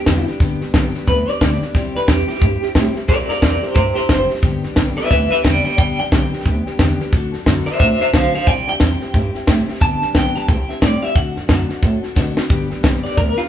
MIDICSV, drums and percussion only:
0, 0, Header, 1, 2, 480
1, 0, Start_track
1, 0, Key_signature, 1, "major"
1, 0, Tempo, 336134
1, 573, Time_signature, 4, 2, 24, 8
1, 19258, End_track
2, 0, Start_track
2, 0, Title_t, "Drums"
2, 90, Note_on_c, 9, 38, 122
2, 90, Note_on_c, 9, 44, 84
2, 94, Note_on_c, 9, 36, 85
2, 233, Note_off_c, 9, 38, 0
2, 233, Note_off_c, 9, 44, 0
2, 237, Note_off_c, 9, 36, 0
2, 389, Note_on_c, 9, 38, 33
2, 532, Note_off_c, 9, 38, 0
2, 574, Note_on_c, 9, 36, 102
2, 575, Note_on_c, 9, 38, 30
2, 717, Note_off_c, 9, 36, 0
2, 718, Note_off_c, 9, 38, 0
2, 872, Note_on_c, 9, 38, 33
2, 1015, Note_off_c, 9, 38, 0
2, 1054, Note_on_c, 9, 38, 108
2, 1054, Note_on_c, 9, 44, 90
2, 1055, Note_on_c, 9, 36, 94
2, 1197, Note_off_c, 9, 38, 0
2, 1197, Note_off_c, 9, 44, 0
2, 1198, Note_off_c, 9, 36, 0
2, 1350, Note_on_c, 9, 38, 33
2, 1493, Note_off_c, 9, 38, 0
2, 1529, Note_on_c, 9, 38, 33
2, 1536, Note_on_c, 9, 36, 103
2, 1672, Note_off_c, 9, 38, 0
2, 1678, Note_off_c, 9, 36, 0
2, 1829, Note_on_c, 9, 38, 34
2, 1971, Note_off_c, 9, 38, 0
2, 2016, Note_on_c, 9, 36, 86
2, 2020, Note_on_c, 9, 38, 114
2, 2020, Note_on_c, 9, 44, 85
2, 2159, Note_off_c, 9, 36, 0
2, 2162, Note_off_c, 9, 38, 0
2, 2162, Note_off_c, 9, 44, 0
2, 2314, Note_on_c, 9, 38, 35
2, 2457, Note_off_c, 9, 38, 0
2, 2495, Note_on_c, 9, 36, 93
2, 2498, Note_on_c, 9, 38, 32
2, 2638, Note_off_c, 9, 36, 0
2, 2641, Note_off_c, 9, 38, 0
2, 2796, Note_on_c, 9, 38, 31
2, 2939, Note_off_c, 9, 38, 0
2, 2971, Note_on_c, 9, 38, 114
2, 2971, Note_on_c, 9, 44, 88
2, 2972, Note_on_c, 9, 36, 91
2, 3114, Note_off_c, 9, 36, 0
2, 3114, Note_off_c, 9, 38, 0
2, 3114, Note_off_c, 9, 44, 0
2, 3275, Note_on_c, 9, 38, 35
2, 3359, Note_off_c, 9, 38, 0
2, 3359, Note_on_c, 9, 38, 32
2, 3449, Note_off_c, 9, 38, 0
2, 3449, Note_on_c, 9, 38, 32
2, 3450, Note_on_c, 9, 36, 105
2, 3592, Note_off_c, 9, 38, 0
2, 3593, Note_off_c, 9, 36, 0
2, 3745, Note_on_c, 9, 38, 36
2, 3888, Note_off_c, 9, 38, 0
2, 3928, Note_on_c, 9, 36, 85
2, 3929, Note_on_c, 9, 38, 107
2, 3929, Note_on_c, 9, 44, 93
2, 4071, Note_off_c, 9, 36, 0
2, 4072, Note_off_c, 9, 38, 0
2, 4072, Note_off_c, 9, 44, 0
2, 4227, Note_on_c, 9, 38, 35
2, 4369, Note_off_c, 9, 38, 0
2, 4407, Note_on_c, 9, 38, 35
2, 4408, Note_on_c, 9, 36, 103
2, 4550, Note_off_c, 9, 38, 0
2, 4551, Note_off_c, 9, 36, 0
2, 4710, Note_on_c, 9, 38, 33
2, 4853, Note_off_c, 9, 38, 0
2, 4887, Note_on_c, 9, 36, 97
2, 4891, Note_on_c, 9, 38, 114
2, 4891, Note_on_c, 9, 44, 91
2, 5030, Note_off_c, 9, 36, 0
2, 5034, Note_off_c, 9, 38, 0
2, 5034, Note_off_c, 9, 44, 0
2, 5184, Note_on_c, 9, 38, 35
2, 5327, Note_off_c, 9, 38, 0
2, 5363, Note_on_c, 9, 38, 31
2, 5365, Note_on_c, 9, 36, 113
2, 5506, Note_off_c, 9, 38, 0
2, 5508, Note_off_c, 9, 36, 0
2, 5660, Note_on_c, 9, 38, 38
2, 5802, Note_off_c, 9, 38, 0
2, 5841, Note_on_c, 9, 38, 110
2, 5841, Note_on_c, 9, 44, 90
2, 5844, Note_on_c, 9, 36, 86
2, 5984, Note_off_c, 9, 38, 0
2, 5984, Note_off_c, 9, 44, 0
2, 5987, Note_off_c, 9, 36, 0
2, 6142, Note_on_c, 9, 38, 37
2, 6222, Note_off_c, 9, 38, 0
2, 6222, Note_on_c, 9, 38, 35
2, 6317, Note_off_c, 9, 38, 0
2, 6317, Note_on_c, 9, 38, 34
2, 6323, Note_on_c, 9, 36, 107
2, 6459, Note_off_c, 9, 38, 0
2, 6466, Note_off_c, 9, 36, 0
2, 6616, Note_on_c, 9, 38, 34
2, 6759, Note_off_c, 9, 38, 0
2, 6799, Note_on_c, 9, 38, 111
2, 6799, Note_on_c, 9, 44, 91
2, 6808, Note_on_c, 9, 36, 89
2, 6942, Note_off_c, 9, 38, 0
2, 6942, Note_off_c, 9, 44, 0
2, 6951, Note_off_c, 9, 36, 0
2, 7107, Note_on_c, 9, 38, 36
2, 7200, Note_off_c, 9, 38, 0
2, 7200, Note_on_c, 9, 38, 33
2, 7293, Note_off_c, 9, 38, 0
2, 7293, Note_on_c, 9, 36, 104
2, 7293, Note_on_c, 9, 38, 33
2, 7435, Note_off_c, 9, 38, 0
2, 7436, Note_off_c, 9, 36, 0
2, 7600, Note_on_c, 9, 38, 34
2, 7742, Note_off_c, 9, 38, 0
2, 7775, Note_on_c, 9, 36, 84
2, 7778, Note_on_c, 9, 38, 106
2, 7778, Note_on_c, 9, 44, 94
2, 7918, Note_off_c, 9, 36, 0
2, 7920, Note_off_c, 9, 38, 0
2, 7920, Note_off_c, 9, 44, 0
2, 8073, Note_on_c, 9, 38, 37
2, 8167, Note_off_c, 9, 38, 0
2, 8167, Note_on_c, 9, 38, 32
2, 8258, Note_on_c, 9, 36, 113
2, 8260, Note_off_c, 9, 38, 0
2, 8260, Note_on_c, 9, 38, 33
2, 8401, Note_off_c, 9, 36, 0
2, 8402, Note_off_c, 9, 38, 0
2, 8558, Note_on_c, 9, 38, 35
2, 8701, Note_off_c, 9, 38, 0
2, 8740, Note_on_c, 9, 36, 93
2, 8742, Note_on_c, 9, 38, 106
2, 8742, Note_on_c, 9, 44, 89
2, 8883, Note_off_c, 9, 36, 0
2, 8885, Note_off_c, 9, 38, 0
2, 8885, Note_off_c, 9, 44, 0
2, 9041, Note_on_c, 9, 38, 34
2, 9136, Note_off_c, 9, 38, 0
2, 9136, Note_on_c, 9, 38, 33
2, 9219, Note_off_c, 9, 38, 0
2, 9219, Note_on_c, 9, 36, 97
2, 9219, Note_on_c, 9, 38, 30
2, 9362, Note_off_c, 9, 36, 0
2, 9362, Note_off_c, 9, 38, 0
2, 9517, Note_on_c, 9, 38, 33
2, 9660, Note_off_c, 9, 38, 0
2, 9698, Note_on_c, 9, 38, 106
2, 9698, Note_on_c, 9, 44, 88
2, 9699, Note_on_c, 9, 36, 88
2, 9841, Note_off_c, 9, 38, 0
2, 9841, Note_off_c, 9, 44, 0
2, 9842, Note_off_c, 9, 36, 0
2, 9995, Note_on_c, 9, 38, 37
2, 10138, Note_off_c, 9, 38, 0
2, 10172, Note_on_c, 9, 38, 31
2, 10177, Note_on_c, 9, 36, 109
2, 10315, Note_off_c, 9, 38, 0
2, 10320, Note_off_c, 9, 36, 0
2, 10472, Note_on_c, 9, 38, 33
2, 10615, Note_off_c, 9, 38, 0
2, 10657, Note_on_c, 9, 36, 87
2, 10658, Note_on_c, 9, 38, 108
2, 10658, Note_on_c, 9, 44, 84
2, 10800, Note_off_c, 9, 36, 0
2, 10801, Note_off_c, 9, 38, 0
2, 10801, Note_off_c, 9, 44, 0
2, 10952, Note_on_c, 9, 38, 34
2, 11042, Note_off_c, 9, 38, 0
2, 11042, Note_on_c, 9, 38, 30
2, 11134, Note_off_c, 9, 38, 0
2, 11134, Note_on_c, 9, 38, 31
2, 11138, Note_on_c, 9, 36, 110
2, 11277, Note_off_c, 9, 38, 0
2, 11281, Note_off_c, 9, 36, 0
2, 11434, Note_on_c, 9, 38, 37
2, 11577, Note_off_c, 9, 38, 0
2, 11617, Note_on_c, 9, 36, 86
2, 11619, Note_on_c, 9, 38, 110
2, 11619, Note_on_c, 9, 44, 92
2, 11760, Note_off_c, 9, 36, 0
2, 11762, Note_off_c, 9, 38, 0
2, 11762, Note_off_c, 9, 44, 0
2, 11911, Note_on_c, 9, 38, 38
2, 12002, Note_off_c, 9, 38, 0
2, 12002, Note_on_c, 9, 38, 34
2, 12090, Note_off_c, 9, 38, 0
2, 12090, Note_on_c, 9, 38, 30
2, 12097, Note_on_c, 9, 36, 104
2, 12233, Note_off_c, 9, 38, 0
2, 12239, Note_off_c, 9, 36, 0
2, 12386, Note_on_c, 9, 38, 31
2, 12529, Note_off_c, 9, 38, 0
2, 12565, Note_on_c, 9, 38, 115
2, 12565, Note_on_c, 9, 44, 95
2, 12575, Note_on_c, 9, 36, 93
2, 12708, Note_off_c, 9, 38, 0
2, 12708, Note_off_c, 9, 44, 0
2, 12718, Note_off_c, 9, 36, 0
2, 12862, Note_on_c, 9, 38, 38
2, 13005, Note_off_c, 9, 38, 0
2, 13043, Note_on_c, 9, 38, 34
2, 13053, Note_on_c, 9, 36, 92
2, 13186, Note_off_c, 9, 38, 0
2, 13196, Note_off_c, 9, 36, 0
2, 13346, Note_on_c, 9, 38, 32
2, 13489, Note_off_c, 9, 38, 0
2, 13529, Note_on_c, 9, 38, 111
2, 13529, Note_on_c, 9, 44, 89
2, 13534, Note_on_c, 9, 36, 94
2, 13672, Note_off_c, 9, 38, 0
2, 13672, Note_off_c, 9, 44, 0
2, 13677, Note_off_c, 9, 36, 0
2, 13829, Note_on_c, 9, 38, 38
2, 13919, Note_off_c, 9, 38, 0
2, 13919, Note_on_c, 9, 38, 35
2, 14011, Note_off_c, 9, 38, 0
2, 14011, Note_on_c, 9, 38, 32
2, 14013, Note_on_c, 9, 36, 103
2, 14154, Note_off_c, 9, 38, 0
2, 14156, Note_off_c, 9, 36, 0
2, 14306, Note_on_c, 9, 38, 34
2, 14449, Note_off_c, 9, 38, 0
2, 14490, Note_on_c, 9, 38, 120
2, 14490, Note_on_c, 9, 44, 88
2, 14493, Note_on_c, 9, 36, 82
2, 14632, Note_off_c, 9, 38, 0
2, 14632, Note_off_c, 9, 44, 0
2, 14636, Note_off_c, 9, 36, 0
2, 14791, Note_on_c, 9, 38, 37
2, 14934, Note_off_c, 9, 38, 0
2, 14971, Note_on_c, 9, 38, 34
2, 14972, Note_on_c, 9, 36, 100
2, 15114, Note_off_c, 9, 38, 0
2, 15115, Note_off_c, 9, 36, 0
2, 15271, Note_on_c, 9, 38, 35
2, 15414, Note_off_c, 9, 38, 0
2, 15452, Note_on_c, 9, 36, 86
2, 15452, Note_on_c, 9, 38, 113
2, 15452, Note_on_c, 9, 44, 91
2, 15594, Note_off_c, 9, 36, 0
2, 15594, Note_off_c, 9, 38, 0
2, 15594, Note_off_c, 9, 44, 0
2, 15745, Note_on_c, 9, 38, 39
2, 15888, Note_off_c, 9, 38, 0
2, 15926, Note_on_c, 9, 38, 32
2, 15930, Note_on_c, 9, 36, 107
2, 16069, Note_off_c, 9, 38, 0
2, 16073, Note_off_c, 9, 36, 0
2, 16226, Note_on_c, 9, 38, 34
2, 16369, Note_off_c, 9, 38, 0
2, 16406, Note_on_c, 9, 38, 116
2, 16406, Note_on_c, 9, 44, 85
2, 16409, Note_on_c, 9, 36, 97
2, 16549, Note_off_c, 9, 38, 0
2, 16549, Note_off_c, 9, 44, 0
2, 16552, Note_off_c, 9, 36, 0
2, 16699, Note_on_c, 9, 38, 37
2, 16842, Note_off_c, 9, 38, 0
2, 16881, Note_on_c, 9, 38, 35
2, 16887, Note_on_c, 9, 36, 100
2, 17023, Note_off_c, 9, 38, 0
2, 17030, Note_off_c, 9, 36, 0
2, 17181, Note_on_c, 9, 38, 35
2, 17324, Note_off_c, 9, 38, 0
2, 17370, Note_on_c, 9, 36, 89
2, 17370, Note_on_c, 9, 38, 59
2, 17370, Note_on_c, 9, 44, 95
2, 17513, Note_off_c, 9, 36, 0
2, 17513, Note_off_c, 9, 38, 0
2, 17513, Note_off_c, 9, 44, 0
2, 17665, Note_on_c, 9, 38, 96
2, 17808, Note_off_c, 9, 38, 0
2, 17851, Note_on_c, 9, 38, 32
2, 17852, Note_on_c, 9, 36, 102
2, 17994, Note_off_c, 9, 38, 0
2, 17995, Note_off_c, 9, 36, 0
2, 18148, Note_on_c, 9, 38, 34
2, 18291, Note_off_c, 9, 38, 0
2, 18334, Note_on_c, 9, 36, 90
2, 18334, Note_on_c, 9, 38, 109
2, 18334, Note_on_c, 9, 44, 91
2, 18476, Note_off_c, 9, 38, 0
2, 18476, Note_off_c, 9, 44, 0
2, 18477, Note_off_c, 9, 36, 0
2, 18635, Note_on_c, 9, 38, 34
2, 18727, Note_off_c, 9, 38, 0
2, 18727, Note_on_c, 9, 38, 31
2, 18814, Note_on_c, 9, 36, 105
2, 18816, Note_off_c, 9, 38, 0
2, 18816, Note_on_c, 9, 38, 33
2, 18957, Note_off_c, 9, 36, 0
2, 18959, Note_off_c, 9, 38, 0
2, 19113, Note_on_c, 9, 38, 35
2, 19256, Note_off_c, 9, 38, 0
2, 19258, End_track
0, 0, End_of_file